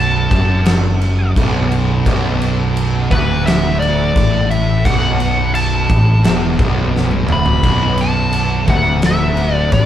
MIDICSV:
0, 0, Header, 1, 5, 480
1, 0, Start_track
1, 0, Key_signature, 2, "minor"
1, 0, Tempo, 698487
1, 1412, Time_signature, 4, 2, 24, 8
1, 6774, End_track
2, 0, Start_track
2, 0, Title_t, "Lead electric guitar"
2, 0, Program_c, 0, 29
2, 0, Note_on_c, 0, 81, 94
2, 906, Note_off_c, 0, 81, 0
2, 2136, Note_on_c, 0, 71, 76
2, 2376, Note_on_c, 0, 76, 84
2, 2382, Note_off_c, 0, 71, 0
2, 2598, Note_off_c, 0, 76, 0
2, 2608, Note_on_c, 0, 74, 86
2, 3094, Note_off_c, 0, 74, 0
2, 3097, Note_on_c, 0, 76, 85
2, 3332, Note_on_c, 0, 78, 99
2, 3342, Note_off_c, 0, 76, 0
2, 3810, Note_off_c, 0, 78, 0
2, 3813, Note_on_c, 0, 81, 93
2, 4745, Note_off_c, 0, 81, 0
2, 5033, Note_on_c, 0, 83, 101
2, 5504, Note_on_c, 0, 81, 96
2, 5515, Note_off_c, 0, 83, 0
2, 5949, Note_off_c, 0, 81, 0
2, 5977, Note_on_c, 0, 78, 94
2, 6220, Note_off_c, 0, 78, 0
2, 6226, Note_on_c, 0, 76, 81
2, 6556, Note_off_c, 0, 76, 0
2, 6556, Note_on_c, 0, 74, 81
2, 6669, Note_off_c, 0, 74, 0
2, 6687, Note_on_c, 0, 74, 82
2, 6774, Note_off_c, 0, 74, 0
2, 6774, End_track
3, 0, Start_track
3, 0, Title_t, "Distorted electric guitar"
3, 0, Program_c, 1, 30
3, 0, Note_on_c, 1, 35, 108
3, 206, Note_off_c, 1, 35, 0
3, 211, Note_on_c, 1, 42, 107
3, 924, Note_off_c, 1, 42, 0
3, 945, Note_on_c, 1, 35, 99
3, 1412, Note_off_c, 1, 35, 0
3, 1424, Note_on_c, 1, 35, 110
3, 2131, Note_off_c, 1, 35, 0
3, 2135, Note_on_c, 1, 38, 109
3, 2847, Note_off_c, 1, 38, 0
3, 2853, Note_on_c, 1, 45, 104
3, 3326, Note_off_c, 1, 45, 0
3, 3345, Note_on_c, 1, 35, 106
3, 4051, Note_off_c, 1, 35, 0
3, 4053, Note_on_c, 1, 45, 104
3, 4286, Note_off_c, 1, 45, 0
3, 4297, Note_on_c, 1, 40, 100
3, 4527, Note_off_c, 1, 40, 0
3, 4530, Note_on_c, 1, 35, 101
3, 4999, Note_off_c, 1, 35, 0
3, 5001, Note_on_c, 1, 38, 98
3, 5239, Note_off_c, 1, 38, 0
3, 5243, Note_on_c, 1, 35, 107
3, 5958, Note_off_c, 1, 35, 0
3, 5962, Note_on_c, 1, 38, 107
3, 6677, Note_off_c, 1, 38, 0
3, 6682, Note_on_c, 1, 45, 100
3, 6774, Note_off_c, 1, 45, 0
3, 6774, End_track
4, 0, Start_track
4, 0, Title_t, "Picked electric bass"
4, 0, Program_c, 2, 34
4, 0, Note_on_c, 2, 23, 89
4, 185, Note_off_c, 2, 23, 0
4, 216, Note_on_c, 2, 30, 87
4, 907, Note_off_c, 2, 30, 0
4, 940, Note_on_c, 2, 23, 93
4, 1389, Note_off_c, 2, 23, 0
4, 1418, Note_on_c, 2, 23, 96
4, 2109, Note_off_c, 2, 23, 0
4, 2142, Note_on_c, 2, 26, 94
4, 2830, Note_off_c, 2, 26, 0
4, 2861, Note_on_c, 2, 33, 88
4, 3310, Note_off_c, 2, 33, 0
4, 3336, Note_on_c, 2, 23, 91
4, 4027, Note_off_c, 2, 23, 0
4, 4053, Note_on_c, 2, 33, 89
4, 4276, Note_off_c, 2, 33, 0
4, 4292, Note_on_c, 2, 28, 82
4, 4515, Note_off_c, 2, 28, 0
4, 4531, Note_on_c, 2, 23, 90
4, 4983, Note_off_c, 2, 23, 0
4, 5018, Note_on_c, 2, 26, 86
4, 5238, Note_off_c, 2, 26, 0
4, 5250, Note_on_c, 2, 23, 91
4, 5942, Note_off_c, 2, 23, 0
4, 5967, Note_on_c, 2, 26, 90
4, 6659, Note_off_c, 2, 26, 0
4, 6681, Note_on_c, 2, 33, 100
4, 6774, Note_off_c, 2, 33, 0
4, 6774, End_track
5, 0, Start_track
5, 0, Title_t, "Drums"
5, 214, Note_on_c, 9, 36, 103
5, 217, Note_on_c, 9, 49, 60
5, 283, Note_off_c, 9, 36, 0
5, 286, Note_off_c, 9, 49, 0
5, 451, Note_on_c, 9, 49, 67
5, 458, Note_on_c, 9, 38, 106
5, 519, Note_off_c, 9, 49, 0
5, 526, Note_off_c, 9, 38, 0
5, 697, Note_on_c, 9, 49, 56
5, 766, Note_off_c, 9, 49, 0
5, 937, Note_on_c, 9, 36, 98
5, 943, Note_on_c, 9, 49, 78
5, 1006, Note_off_c, 9, 36, 0
5, 1011, Note_off_c, 9, 49, 0
5, 1180, Note_on_c, 9, 49, 52
5, 1248, Note_off_c, 9, 49, 0
5, 1417, Note_on_c, 9, 36, 98
5, 1420, Note_on_c, 9, 49, 70
5, 1486, Note_off_c, 9, 36, 0
5, 1488, Note_off_c, 9, 49, 0
5, 1660, Note_on_c, 9, 49, 51
5, 1729, Note_off_c, 9, 49, 0
5, 1902, Note_on_c, 9, 49, 69
5, 1971, Note_off_c, 9, 49, 0
5, 2139, Note_on_c, 9, 36, 101
5, 2144, Note_on_c, 9, 49, 53
5, 2208, Note_off_c, 9, 36, 0
5, 2212, Note_off_c, 9, 49, 0
5, 2386, Note_on_c, 9, 49, 70
5, 2393, Note_on_c, 9, 38, 104
5, 2455, Note_off_c, 9, 49, 0
5, 2462, Note_off_c, 9, 38, 0
5, 2626, Note_on_c, 9, 49, 57
5, 2695, Note_off_c, 9, 49, 0
5, 2858, Note_on_c, 9, 36, 106
5, 2866, Note_on_c, 9, 49, 69
5, 2927, Note_off_c, 9, 36, 0
5, 2935, Note_off_c, 9, 49, 0
5, 3100, Note_on_c, 9, 49, 53
5, 3169, Note_off_c, 9, 49, 0
5, 3334, Note_on_c, 9, 36, 102
5, 3340, Note_on_c, 9, 49, 80
5, 3403, Note_off_c, 9, 36, 0
5, 3409, Note_off_c, 9, 49, 0
5, 3574, Note_on_c, 9, 49, 58
5, 3642, Note_off_c, 9, 49, 0
5, 3813, Note_on_c, 9, 49, 77
5, 3882, Note_off_c, 9, 49, 0
5, 4052, Note_on_c, 9, 36, 104
5, 4056, Note_on_c, 9, 49, 55
5, 4121, Note_off_c, 9, 36, 0
5, 4125, Note_off_c, 9, 49, 0
5, 4290, Note_on_c, 9, 49, 76
5, 4297, Note_on_c, 9, 38, 106
5, 4359, Note_off_c, 9, 49, 0
5, 4366, Note_off_c, 9, 38, 0
5, 4530, Note_on_c, 9, 36, 110
5, 4531, Note_on_c, 9, 49, 56
5, 4598, Note_off_c, 9, 36, 0
5, 4600, Note_off_c, 9, 49, 0
5, 4786, Note_on_c, 9, 38, 61
5, 4855, Note_off_c, 9, 38, 0
5, 4888, Note_on_c, 9, 48, 62
5, 4956, Note_off_c, 9, 48, 0
5, 5006, Note_on_c, 9, 45, 77
5, 5075, Note_off_c, 9, 45, 0
5, 5124, Note_on_c, 9, 43, 82
5, 5193, Note_off_c, 9, 43, 0
5, 5247, Note_on_c, 9, 36, 101
5, 5249, Note_on_c, 9, 49, 75
5, 5315, Note_off_c, 9, 36, 0
5, 5317, Note_off_c, 9, 49, 0
5, 5481, Note_on_c, 9, 49, 55
5, 5550, Note_off_c, 9, 49, 0
5, 5722, Note_on_c, 9, 49, 71
5, 5791, Note_off_c, 9, 49, 0
5, 5962, Note_on_c, 9, 49, 53
5, 5965, Note_on_c, 9, 36, 96
5, 6030, Note_off_c, 9, 49, 0
5, 6034, Note_off_c, 9, 36, 0
5, 6199, Note_on_c, 9, 49, 63
5, 6206, Note_on_c, 9, 38, 110
5, 6268, Note_off_c, 9, 49, 0
5, 6275, Note_off_c, 9, 38, 0
5, 6437, Note_on_c, 9, 49, 51
5, 6506, Note_off_c, 9, 49, 0
5, 6679, Note_on_c, 9, 49, 71
5, 6682, Note_on_c, 9, 36, 97
5, 6747, Note_off_c, 9, 49, 0
5, 6751, Note_off_c, 9, 36, 0
5, 6774, End_track
0, 0, End_of_file